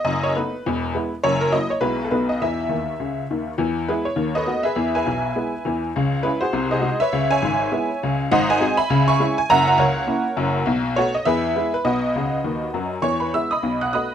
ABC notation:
X:1
M:4/4
L:1/16
Q:"Swing" 1/4=203
K:E
V:1 name="Honky-tonk piano"
d2 c2 B8- B2 z2 | c2 ^A2 d2 c2 B3 =A B2 d2 | e12- e2 z2 | z4 [EGB]2 c4 [ABd]4 [GBe]2- |
[GBe]2 [Beg]12 z2 | z4 [EGB]2 [FG=c]4 [G^Bd]4 [=B^ce]2- | [Bce]2 [ceg]12 z2 | [^Bdf]2 [Bdg]4 [eg=b]4 [egc']4 g2 |
[ef^a]2 f2 [^Acf]12 | z4 [FAc]2 d2 [GBe]6 B2 | [FBd]12- [FBd]2 z2 | [cc']2 [Bb]2 [ee']2 [dbd']4 [ff']2 [dbd']4 |]
V:2 name="Honky-tonk piano" clef=bass
[F,,,F,,]4 [A,B,D]4 [E,,,E,,]4 [G,B,E]4 | [F,,,F,,]4 [F,^A,E]4 [B,,,B,,G,B,E]4 [B,,,B,,=A,B,D]4 | [E,,E,]4 [D,,D,]4 [C,,C,]4 [D,,D,]4 | [E,,E,]4 [G,B,]4 [D,,D,]4 [A,B,F]4 |
[E,,E,]4 [B,,,B,,]4 [G,B,E]4 [E,,E,]4 | [C,,C,]4 [G,C]4 [^B,,,^B,,]4 [G,DF]4 | [C,,C,]4 [G,,,G,,]4 [G,B,E]4 [C,,C,]4 | [G,,,G,,]4 [G,^B,F]4 [C,,C,]4 [G,CE]4 |
[F,,,F,,]4 C,,4 [^A,CE]4 [F,,,F,,]4 | [B,,,B,,]4 [A,B,]4 [E,,E,]4 [G,B,E]4 | [B,,,B,,]4 [C,,C,]4 [D,,D,]4 [F,,F,]4 | [E,,E,]4 [G,B,E]4 [B,,,B,,]4 [A,B,F]4 |]